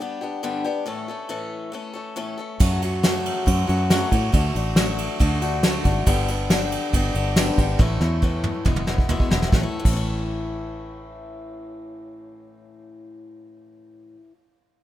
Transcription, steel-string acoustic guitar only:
0.00 0.22 G3 medium
0.00 0.22 B3 medium
0.00 0.21 D4 medium
0.00 0.20 G4 medium
0.21 0.42 G3 medium
0.21 0.43 B3 medium
0.21 0.43 D4 medium
0.21 0.43 G4 medium
0.43 0.65 G2 medium
0.43 0.65 D3 loud
0.43 0.65 G3 medium
0.43 0.64 B3 loud
0.43 0.64 D4 loud
0.43 0.63 G4 loud
0.64 0.86 G3 medium
0.64 0.86 B3 medium
0.64 0.87 D4 medium
0.64 0.87 G4 medium
0.86 1.08 A2 medium
0.86 1.08 E3 medium
0.86 1.08 A3 medium
0.86 1.08 C#4 medium
0.86 1.07 A4 medium
1.08 1.28 A3 medium
1.08 1.28 C#4 medium
1.08 1.29 A4 medium
1.29 1.73 A2 medium
1.29 1.71 E3 medium
1.29 1.73 A3 medium
1.29 1.73 C#4 medium
1.29 1.74 A4 medium
1.72 1.94 E3 medium
1.72 1.95 A3 medium
1.72 1.94 C#4 medium
1.72 1.92 A4 medium
1.93 2.15 A3 soft
1.93 2.16 C#4 medium
1.93 2.16 A4 medium
2.16 2.38 A2 medium
2.16 2.38 E3 loud
2.16 2.38 A3 loud
2.16 2.38 C#4 medium
2.16 2.36 A4 loud
2.38 2.59 A3 soft
2.38 2.60 C#4 medium
2.38 2.60 A4 medium
2.60 2.82 F#2 medium
2.60 2.82 C#3 medium
2.60 2.82 F#3 medium
2.60 2.82 A3 loud
2.60 2.82 C#4 medium
2.60 2.81 F#4 loud
2.82 3.03 F#3 medium
2.82 3.03 A3 medium
2.82 3.03 C#4 medium
2.82 3.04 F#4 medium
3.03 3.47 F#2 medium
3.03 3.47 C#3 medium
3.03 3.45 F#3 medium
3.03 3.46 A3 medium
3.03 3.46 C#4 medium
3.03 3.48 F#4 medium
3.46 3.68 F#3 medium
3.46 3.68 A3 medium
3.46 3.67 C#4 medium
3.46 3.66 F#4 medium
3.67 3.90 F#3 soft
3.67 3.90 A3 medium
3.67 3.90 C#4 medium
3.67 3.90 F#4 medium
3.90 4.12 F#2 loud
3.90 4.12 C#3 loud
3.90 4.12 F#3 medium
3.90 4.11 A3 loud
3.90 4.11 C#4 loud
3.90 4.10 F#4 loud
4.11 4.32 F#3 soft
4.11 4.33 A3 medium
4.11 4.34 C#4 medium
4.11 4.33 F#4 medium
4.32 4.54 D3 medium
4.32 4.55 A3 medium
4.32 4.55 D4 loud
4.32 4.54 F#4 medium
4.55 4.76 A3 soft
4.55 4.77 D4 medium
4.55 4.77 F#4 medium
4.77 5.18 D3 medium
4.77 5.19 A3 medium
4.77 5.21 D4 medium
4.77 5.21 F#4 medium
5.19 5.41 D3 medium
5.19 5.42 A3 medium
5.19 5.41 D4 medium
5.19 5.40 F#4 medium
5.41 5.63 A3 medium
5.41 5.64 D4 medium
5.41 5.63 F#4 medium
5.63 5.85 D3 medium
5.63 5.85 A3 loud
5.63 5.84 D4 loud
5.63 5.83 F#4 loud
5.84 6.07 A3 medium
5.84 6.07 D4 medium
5.84 6.06 F#4 medium
6.06 6.28 G2 medium
6.06 6.28 D3 medium
6.06 6.28 G3 loud
6.06 6.29 B3 loud
6.06 6.29 D4 loud
6.06 6.28 G4 medium
6.29 6.50 G3 medium
6.29 6.50 B3 medium
6.29 6.51 D4 medium
6.29 6.50 G4 medium
6.51 6.94 G2 medium
6.51 6.94 D3 medium
6.51 6.92 G3 medium
6.51 6.93 B3 medium
6.51 6.94 D4 medium
6.51 6.94 G4 loud
6.93 7.15 G3 medium
6.93 7.15 B3 medium
6.93 7.15 D4 medium
6.93 7.13 G4 medium
7.15 7.37 G3 soft
7.15 7.37 B3 medium
7.15 7.37 D4 medium
7.15 7.36 G4 medium
7.37 7.58 G2 medium
7.37 7.59 D3 medium
7.37 7.59 G3 loud
7.37 7.59 B3 medium
7.37 7.58 D4 loud
7.37 7.57 G4 loud
7.58 7.80 G3 medium
7.58 7.80 B3 medium
7.58 7.80 D4 medium
7.58 7.80 G4 medium
7.80 8.01 A2 medium
7.80 8.01 E3 medium
7.80 8.02 A3 loud
7.80 8.01 C#4 medium
7.80 7.99 E4 medium
8.01 8.22 A3 medium
8.01 8.23 C#4 medium
8.01 8.23 E4 medium
8.22 8.66 A2 medium
8.22 8.64 E3 medium
8.22 8.66 A3 medium
8.22 8.66 C#4 medium
8.22 8.66 E4 medium
8.65 8.87 E3 medium
8.65 8.87 G#3 medium
8.65 8.87 B3 medium
8.65 8.86 E4 medium
8.87 9.09 E3 soft
8.87 9.09 G#3 medium
8.87 9.09 B3 medium
8.87 9.09 E4 medium
9.09 9.31 E2 medium
9.09 9.31 B2 medium
9.09 9.31 E3 loud
9.09 9.31 G#3 loud
9.09 9.30 B3 medium
9.09 9.29 E4 loud
9.30 9.51 E3 medium
9.30 9.53 G#3 medium
9.30 9.53 B3 medium
9.30 9.52 E4 medium
9.47 9.79 A2 medium
9.52 9.85 E3 medium
9.52 9.89 A3 medium
9.60 9.92 C#4 medium
9.60 9.96 E4 medium
9.79 14.15 A2 medium
9.85 14.20 E3 medium
9.89 14.24 A3 medium
9.89 14.28 C#4 medium
9.96 14.32 E4 loud

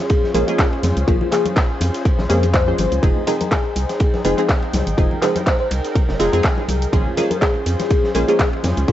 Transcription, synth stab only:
0.34 0.46 F3 medium
0.34 0.46 G#3 medium
0.34 0.46 A#3 medium
0.34 0.46 C#4 medium
0.34 0.46 G#4 medium
0.47 1.05 F3 medium
0.47 1.05 G#3 medium
0.47 1.05 A#3 medium
0.47 1.05 C#4 medium
0.47 1.06 G#4 loud
1.07 1.29 F3 medium
1.07 1.29 G#3 medium
1.07 1.29 A#3 medium
1.07 1.29 C#4 medium
1.07 1.29 G#4 medium
1.32 1.46 F3 medium
1.32 1.47 G#3 medium
1.32 1.47 A#3 medium
1.32 1.47 C#4 medium
1.32 1.47 G#4 medium
2.29 2.44 F3 loud
2.29 2.44 G#3 medium
2.29 2.44 A#3 medium
2.29 2.44 C#4 medium
2.29 2.44 G#4 loud
2.67 3.00 F3 medium
2.67 3.00 G#3 medium
2.67 3.00 A#3 medium
2.67 3.00 C#4 medium
2.67 3.00 C5 medium
3.02 3.24 F3 medium
3.02 3.24 G#3 medium
3.02 3.24 C4 medium
3.02 3.24 D#4 medium
3.02 3.24 G#4 medium
3.27 3.41 F3 medium
3.27 3.42 G#3 medium
3.27 3.42 C4 medium
3.27 3.42 D#4 medium
3.27 3.42 G#4 medium
4.24 4.36 F3 medium
4.24 4.36 G#3 medium
4.24 4.36 C4 medium
4.24 4.36 D#4 medium
4.24 4.36 G#4 medium
4.37 4.95 F3 loud
4.37 4.95 G#3 medium
4.37 4.95 C4 medium
4.37 4.96 D#4 medium
4.37 4.96 G#4 loud
4.97 5.19 F3 medium
4.97 5.19 G#3 medium
4.97 5.19 C4 medium
4.97 5.19 D#4 medium
4.97 5.19 G#4 medium
5.22 5.37 F3 medium
5.22 5.37 G#3 medium
5.22 5.37 C4 medium
5.22 5.37 D#4 medium
5.22 5.37 G#4 medium
6.19 6.31 F3 medium
6.19 6.31 G#3 medium
6.19 6.31 C4 medium
6.19 6.31 D#4 medium
6.19 6.32 G#4 loud
6.32 6.90 F3 loud
6.32 6.90 G#3 medium
6.32 6.90 C4 medium
6.32 6.91 D#4 medium
6.32 6.91 G#4 loud
6.93 7.14 F3 medium
6.93 7.14 G#3 medium
6.93 7.14 A#3 medium
6.93 7.14 C#4 medium
6.93 7.14 G#4 medium
7.17 7.32 F3 medium
7.17 7.32 G#3 medium
7.17 7.32 A#3 medium
7.17 7.32 C#4 medium
7.17 7.32 G#4 medium
8.15 8.26 F3 medium
8.15 8.26 G#3 medium
8.15 8.26 A#3 medium
8.15 8.27 C#4 medium
8.15 8.27 G#4 medium
8.28 8.85 F3 medium
8.28 8.85 G#3 medium
8.28 8.86 A#3 medium
8.28 8.86 C#4 medium
8.28 8.86 G#4 loud
8.88 8.92 F3 medium
8.88 8.92 G#3 medium
8.88 8.92 A#3 medium
8.88 8.92 C#4 medium
8.88 8.92 G#4 medium

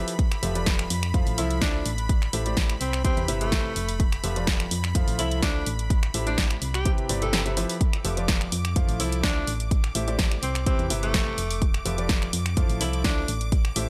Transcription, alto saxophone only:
1.38 1.58 E4 medium
1.62 1.91 D4 medium
2.81 3.02 C4 loud
3.05 3.25 C4 loud
3.41 4.05 A3 loud
5.19 5.39 E4 medium
5.43 5.72 D4 loud
6.27 6.47 D4 medium
6.74 6.91 G4 loud
7.22 7.57 A4 medium
9.00 9.20 E4 medium
9.24 9.53 D4 loud
10.43 10.64 C4 medium
10.66 10.87 C4 medium
11.03 11.67 A3 loud
12.81 13.01 E4 medium
13.05 13.33 D4 loud

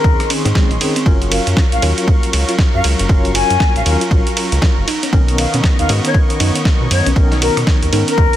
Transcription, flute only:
0.00 0.30 A#4 medium
1.32 1.47 F5 medium
1.72 1.83 F5 medium
2.74 2.85 F5 loud
3.35 3.73 G#5 loud
3.76 3.82 F5 medium
3.86 3.96 F5 medium
5.38 5.54 F5 medium
5.79 5.90 F5 medium
6.04 6.15 C#5 medium
6.91 7.06 C#5 medium
7.42 7.57 A#4 loud
8.08 8.37 A#4 medium

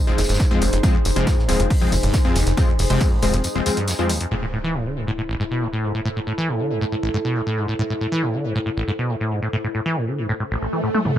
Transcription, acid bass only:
0.07 0.13 F1 loud
0.18 0.22 D#2 loud
0.29 0.41 G2 medium
0.40 0.46 F2 loud
0.51 0.63 F2 medium
0.61 0.71 D#2 loud
0.73 0.79 F2 medium
0.83 0.87 F2 loud
0.94 0.98 F2 medium
1.05 1.11 F2 medium
1.16 1.28 C3 loud
1.27 1.40 F2 medium
1.38 1.50 A#2 medium
1.49 1.58 D#2 loud
1.60 1.63 F2 loud
1.70 1.74 F2 medium
1.82 1.87 F1 loud
1.92 1.96 D#2 loud
2.03 2.15 G2 medium
2.14 2.20 F2 loud
2.25 2.37 F2 medium
2.36 2.45 D#2 loud
2.47 2.53 F2 medium
2.57 2.61 F2 loud
2.68 2.72 F2 medium
2.79 2.85 F2 medium
2.90 3.02 C3 loud
3.01 3.13 F2 medium
3.12 3.24 A#2 medium
3.23 3.32 D#2 loud
3.34 3.37 F2 loud
3.44 3.48 F2 medium
3.55 3.61 F1 loud
3.66 3.70 D#2 loud
3.77 3.89 G2 medium
3.88 3.94 F2 loud
3.99 4.11 F2 medium
4.10 4.19 D#2 loud
4.21 4.26 F2 medium
4.31 4.35 A2 loud
4.42 4.46 A2 medium
4.53 4.59 A2 medium
4.64 4.76 E3 loud
4.75 4.87 A2 medium
4.86 4.98 D3 medium
4.96 5.06 G#2 medium
5.07 5.11 A2 loud
5.18 5.22 A2 medium
5.29 5.35 A1 medium
5.40 5.44 G#2 loud
5.51 5.63 B2 medium
5.62 5.68 A2 medium
5.73 5.85 A2 medium
5.83 5.93 G#2 loud
5.95 6.00 A2 medium
6.05 6.09 A2 loud
6.16 6.20 A2 medium
6.27 6.33 A2 medium
6.38 6.50 E3 loud
6.49 6.61 A2 medium
6.60 6.72 D3 medium
6.70 6.80 G#2 loud
6.81 6.85 A2 loud
6.92 6.96 A2 medium
7.03 7.09 A1 loud
7.14 7.17 G#2 loud
7.25 7.37 B2 medium
7.36 7.42 A2 medium
7.47 7.59 A2 medium
7.57 7.66 G#2 loud
7.68 7.74 A2 medium
7.79 7.83 A2 loud
7.90 7.94 A2 medium
8.01 8.07 A2 medium
8.12 8.24 E3 loud
8.23 8.35 A2 medium
8.34 8.46 D3 medium
8.44 8.53 G#2 loud
8.55 8.59 A2 loud
8.66 8.70 A2 medium
8.77 8.83 A1 loud
8.88 8.91 G#2 loud
8.99 9.11 B2 medium
9.09 9.16 A2 medium
9.21 9.33 A2 medium
9.31 9.40 G#2 loud
9.42 9.48 A2 medium
9.53 9.57 A2 loud
9.64 9.68 A2 medium
9.75 9.81 A2 medium
9.86 9.98 E3 loud
9.96 10.09 A2 medium
10.07 10.20 D3 medium
10.18 10.27 G#2 loud
10.29 10.33 A2 loud
10.40 10.44 A2 medium
10.51 10.57 A1 loud
10.62 10.68 A1 medium
10.73 10.82 E3 medium
10.83 10.89 A2 medium
10.94 11.00 A3 loud
11.05 11.11 A2 medium

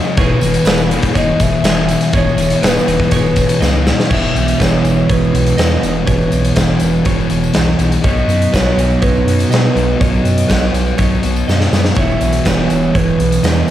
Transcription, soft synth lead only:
0.19 0.88 B4 loud
1.17 1.43 D#5 loud
1.41 2.18 E5 loud
2.17 2.68 C#5 medium
2.66 3.13 B4 loud
3.15 3.83 B4 medium
4.12 4.63 E5 loud
4.61 5.13 C#5 loud
5.11 6.08 B4 loud
6.10 6.78 B4 medium
8.04 8.55 D#5 loud
8.54 9.03 C#5 loud
9.02 9.50 B4 medium
9.51 10.02 B4 medium
10.01 10.74 D#5 medium
11.99 12.50 E5 loud
12.48 12.98 C#5 loud
12.96 13.70 B4 medium

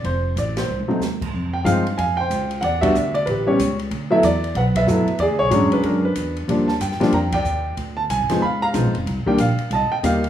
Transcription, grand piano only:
0.05 0.35 C5 medium
0.38 0.58 D5 medium
0.58 0.99 C5 medium
0.88 1.00 F#3 medium
0.88 1.00 A3 medium
0.88 1.00 C4 soft
0.88 1.00 D#4 medium
1.53 1.66 G5 medium
1.64 1.83 F3 medium
1.64 1.83 G#3 medium
1.64 1.83 C4 medium
1.64 1.83 D#4 medium
1.64 1.98 F5 medium
1.98 2.59 F5 medium
1.98 2.16 G#5 medium
2.17 2.60 C5 medium
2.17 2.63 G5 loud
2.61 3.13 D5 medium
2.61 2.80 F#5 loud
2.81 2.93 G3 medium
2.81 2.93 B3 medium
2.81 2.93 D4 medium
2.81 2.93 F#4 medium
2.81 3.15 E5 medium
3.14 3.27 D5 medium
3.26 3.46 G4 medium
3.26 3.45 B4 medium
3.47 3.58 G3 medium
3.47 3.58 B3 medium
3.47 3.58 C#4 medium
3.47 3.58 G4 medium
3.47 3.77 C#5 medium
4.10 4.22 F#3 medium
4.10 4.22 A3 medium
4.10 4.22 B3 medium
4.10 4.22 E4 medium
4.10 4.24 E5 medium
4.24 4.54 D5 medium
4.57 4.76 B4 medium
4.57 4.62 F#5 medium
4.77 5.18 B4 medium
4.77 5.22 E5 medium
4.87 5.05 F#3 medium
4.87 5.06 A3 medium
4.87 5.06 B3 medium
4.87 5.06 E4 medium
5.20 5.81 G#4 medium
5.20 5.25 D5 loud
5.39 5.73 C#5 loud
5.50 5.99 F#3 medium
5.50 5.99 G#3 medium
5.50 6.00 C#4 medium
5.50 5.85 D4 medium
5.73 5.84 B4 medium
5.86 6.46 D4 medium
5.86 6.04 A#4 medium
6.05 6.34 B4 medium
6.48 6.66 F3 medium
6.48 6.67 G3 medium
6.48 6.67 A#3 medium
6.48 6.67 D4 medium
6.68 6.73 A5 medium
6.81 7.13 G5 medium
7.00 7.11 F3 medium
7.00 7.11 G3 medium
7.00 7.11 A#3 medium
7.00 7.12 D4 medium
7.14 7.32 G5 medium
7.14 7.34 A#5 medium
7.33 7.75 D5 medium
7.33 7.74 G5 loud
7.97 8.02 A5 medium
8.10 8.43 G#5 medium
8.30 8.41 F3 medium
8.30 8.41 G#3 medium
8.30 8.41 B3 medium
8.30 8.41 D#4 medium
8.42 8.62 F5 medium
8.42 8.63 B5 medium
8.62 9.04 F5 medium
8.62 9.03 A#5 loud
8.74 8.92 F3 medium
8.74 8.92 G#3 soft
8.74 8.92 B3 soft
8.74 8.92 D#4 medium
9.26 9.37 D#3 medium
9.26 9.37 G3 medium
9.26 9.37 A#3 medium
9.26 9.38 D4 medium
9.26 9.39 G5 medium
9.40 9.69 F5 medium
9.73 10.29 D#5 medium
9.73 9.92 A5 medium
9.92 9.97 G5 medium
10.03 10.21 D#3 medium
10.03 10.21 G3 medium
10.03 10.21 A#3 medium
10.03 10.21 D#4 medium
10.03 10.29 F5 medium

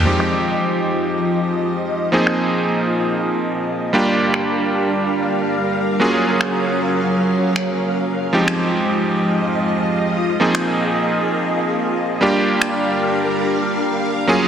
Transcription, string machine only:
0.06 2.11 F3 medium
0.06 3.90 F4 medium
0.06 3.90 D#5 medium
2.12 3.92 A#3 medium
3.94 5.99 G3 medium
3.94 5.99 D4 medium
3.94 8.29 A#4 medium
3.94 8.29 F5 medium
6.01 8.31 F#3 medium
6.01 8.31 C#4 medium
8.33 10.38 F3 medium
8.33 10.38 G#3 medium
8.33 12.17 F4 medium
8.33 12.17 D#5 medium
10.40 12.20 A#3 medium
10.40 12.20 G#4 medium
12.21 14.26 G3 medium
12.21 14.26 D4 medium
12.21 14.26 A#4 medium
12.21 14.48 F5 medium
14.28 14.48 F#3 medium
14.28 14.48 C#4 medium
14.28 14.48 A#4 medium

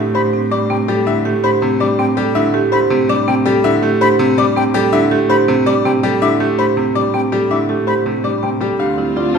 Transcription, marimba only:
0.00 0.14 G4 medium
0.15 0.39 G4 loud
0.33 0.57 C4 medium
0.51 0.75 D4 medium
0.70 0.94 C4 loud
0.88 1.12 A4 medium
1.07 1.31 E4 medium
1.25 1.43 G4 loud
1.44 1.67 G4 loud
1.62 1.86 C4 medium
1.80 2.04 D4 medium
1.99 2.23 C4 loud
2.17 2.41 A4 medium
2.36 2.59 E4 medium
2.54 2.71 G4 loud
2.73 2.96 G4 loud
2.91 3.15 C4 loud
3.10 3.33 D4 loud
3.28 3.51 C4 loud
3.46 3.70 A4 loud
3.65 3.88 E4 loud
3.83 4.00 G4 loud
4.01 4.25 G4 loud
4.20 4.43 C4 loud
4.38 4.62 D4 loud
4.56 4.80 C4 loud
4.75 4.99 A4 loud
4.93 5.17 E4 loud
5.11 5.29 G4 loud
5.30 5.54 G4 loud
5.48 5.72 C4 medium
5.67 5.91 D4 loud
5.85 6.09 C4 loud
6.04 6.28 A4 medium
6.22 6.46 E4 medium
6.40 6.58 G4 loud
6.59 6.83 G4 loud
6.77 7.01 C4 medium
6.95 7.19 D4 medium
7.14 7.38 C4 loud
7.33 7.56 A4 medium
7.51 7.75 E4 medium
7.69 7.86 G4 medium
7.88 8.11 G4 medium
8.06 8.30 C4 medium
8.24 8.48 D4 medium
8.43 8.67 C4 medium
8.61 8.85 A4 medium
8.80 9.04 G4 medium
8.98 9.22 E4 medium
9.17 9.34 F4 loud
9.35 9.38 F4 loud

